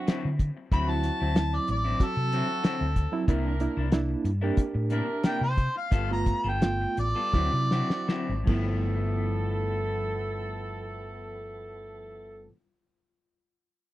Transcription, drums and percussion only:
0.08 snare loud
0.08 closed hi-hat medium
0.39 kick medium
0.39 closed hi-hat medium
0.72 kick loud
0.72 closed hi-hat medium
1.03 snare soft
1.03 closed hi-hat medium
1.36 snare loud
1.36 closed hi-hat medium
1.68 closed hi-hat medium
2.00 kick loud
2.00 closed hi-hat medium
2.32 closed hi-hat medium
2.64 snare loud
2.64 closed hi-hat medium
2.96 kick medium
2.96 closed hi-hat medium
3.28 kick loud
3.28 closed hi-hat medium
3.60 closed hi-hat medium
3.92 snare loud
3.92 closed hi-hat medium
4.25 closed hi-hat medium
4.57 kick loud
4.57 closed hi-hat medium
4.90 closed hi-hat medium
5.24 snare loud
5.24 closed hi-hat medium
5.58 kick medium
5.58 closed hi-hat medium
5.92 kick loud
5.92 closed hi-hat medium
6.26 kick medium
6.26 closed hi-hat medium
6.62 snare loud
6.62 closed hi-hat medium
6.97 closed hi-hat medium
7.33 kick loud
7.33 snare medium
7.71 snare medium
7.90 snare medium
8.09 snare medium
8.47 kick loud
8.47 crash medium

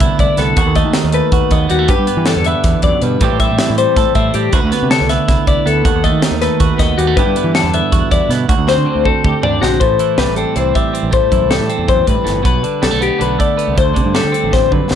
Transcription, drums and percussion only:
0.00 kick loud
0.00 closed hi-hat medium
0.19 kick medium
0.19 closed hi-hat medium
0.37 snare soft
0.37 closed hi-hat medium
0.57 kick loud
0.57 closed hi-hat medium
0.75 kick medium
0.75 closed hi-hat medium
0.94 snare loud
0.94 closed hi-hat medium
1.12 closed hi-hat medium
1.32 kick loud
1.32 closed hi-hat medium
1.51 kick medium
1.51 closed hi-hat medium
1.70 closed hi-hat medium
1.88 kick loud
1.88 closed hi-hat medium
2.07 closed hi-hat medium
2.26 snare loud
2.26 closed hi-hat medium
2.44 closed hi-hat medium
2.64 kick loud
2.64 snare soft
2.64 closed hi-hat medium
2.82 kick medium
2.82 closed hi-hat medium
3.02 closed hi-hat medium
3.21 kick loud
3.21 closed hi-hat medium
3.40 kick medium
3.40 closed hi-hat medium
3.59 snare loud
3.59 closed hi-hat medium
3.78 closed hi-hat medium
3.96 kick loud
3.96 snare soft
3.96 closed hi-hat medium
4.15 kick medium
4.15 closed hi-hat medium
4.34 closed hi-hat medium
4.53 kick loud
4.53 closed hi-hat medium
4.72 snare soft
4.72 closed hi-hat medium
4.91 snare loud
4.91 closed hi-hat medium
5.09 snare soft
5.09 closed hi-hat medium
5.28 kick loud
5.28 snare soft
5.28 closed hi-hat medium
5.47 kick medium
5.47 closed hi-hat medium
5.67 closed hi-hat medium
5.85 kick loud
5.85 closed hi-hat medium
6.04 kick medium
6.04 closed hi-hat medium
6.22 snare loud
6.22 closed hi-hat loud
6.42 snare soft
6.42 closed hi-hat medium
6.60 kick loud
6.60 closed hi-hat medium
6.79 kick medium
6.79 snare soft
6.79 closed hi-hat medium
6.99 closed hi-hat medium
7.17 kick loud
7.17 closed hi-hat medium
7.36 closed hi-hat medium
7.55 snare loud
7.55 closed hi-hat medium
7.74 closed hi-hat medium
7.92 kick loud
7.92 closed hi-hat medium
8.11 kick medium
8.11 closed hi-hat medium
8.31 snare soft
8.31 closed hi-hat medium
8.49 kick loud
8.49 closed hi-hat medium
8.68 snare medium
9.05 kick medium
9.24 kick loud
9.43 floor tom loud
9.63 snare medium
9.81 kick medium
9.81 closed hi-hat medium
9.99 closed hi-hat medium
10.18 snare loud
10.18 closed hi-hat medium
10.36 closed hi-hat medium
10.56 closed hi-hat medium
10.75 kick medium
10.75 closed hi-hat medium
10.95 closed hi-hat medium
11.12 kick loud
11.12 closed hi-hat medium
11.32 kick medium
11.32 closed hi-hat medium
11.51 snare loud
11.51 closed hi-hat medium
11.70 closed hi-hat medium
11.88 kick loud
11.88 closed hi-hat medium
12.07 kick medium
12.07 closed hi-hat medium
12.27 snare soft
12.27 closed hi-hat medium
12.45 kick loud
12.45 closed hi-hat medium
12.64 closed hi-hat medium
12.83 snare loud
12.83 closed hi-hat medium
13.02 closed hi-hat medium
13.21 closed hi-hat medium
13.40 kick medium
13.40 closed hi-hat medium
13.59 closed hi-hat medium
13.78 kick loud
13.78 closed hi-hat medium
13.96 kick medium
13.96 closed hi-hat medium
14.15 snare loud
14.15 closed hi-hat medium
14.34 closed hi-hat medium
14.53 kick medium
14.53 snare medium
14.72 kick medium
14.91 snare medium

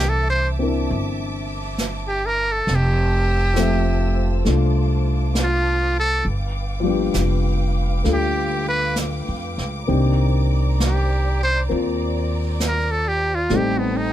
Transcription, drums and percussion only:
0.88 brush sweep soft
1.78 snare soft
1.78 hi-hat pedal medium
2.67 brush sweep soft
2.67 snare soft
3.56 snare soft
3.56 hi-hat pedal soft
4.45 brush sweep soft
4.45 snare soft
5.35 snare soft
5.35 hi-hat pedal medium
6.24 brush sweep soft
7.14 snare soft
7.14 hi-hat pedal medium
8.05 brush sweep soft
8.05 snare soft
8.96 snare soft
8.96 hi-hat pedal medium
9.58 snare soft
9.88 brush sweep soft
10.80 snare soft
10.80 hi-hat pedal soft
11.71 brush sweep soft
12.60 snare soft
12.60 hi-hat pedal medium
13.50 brush sweep soft
13.50 snare soft

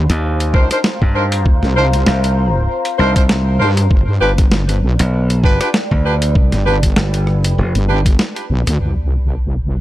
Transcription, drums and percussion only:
0.10 closed hi-hat medium
0.40 closed hi-hat soft
0.54 kick loud
0.71 cross-stick soft
0.71 closed hi-hat medium
0.84 snare loud
1.02 kick medium
1.32 closed hi-hat medium
1.46 kick loud
1.63 snare soft
1.93 closed hi-hat medium
2.07 snare loud
2.24 closed hi-hat soft
2.85 closed hi-hat soft
3.16 kick loud
3.16 closed hi-hat medium
3.29 snare loud
3.77 cross-stick soft
3.77 closed hi-hat medium
3.91 kick loud
4.38 kick loud
4.38 closed hi-hat medium
4.52 snare loud
4.69 closed hi-hat medium
4.99 closed hi-hat medium
5.30 closed hi-hat soft
5.44 kick loud
5.61 cross-stick medium
5.61 closed hi-hat medium
5.74 snare loud
5.91 kick medium
6.22 closed hi-hat medium
6.35 kick loud
6.52 snare soft
6.52 closed hi-hat soft
6.83 kick medium
6.83 closed hi-hat medium
6.96 snare loud
7.14 closed hi-hat medium
7.27 cross-stick soft
7.44 closed hi-hat medium
7.75 closed hi-hat medium
8.06 kick loud
8.06 closed hi-hat medium
8.19 snare loud
8.36 closed hi-hat soft
8.67 cross-stick soft
8.67 closed hi-hat medium

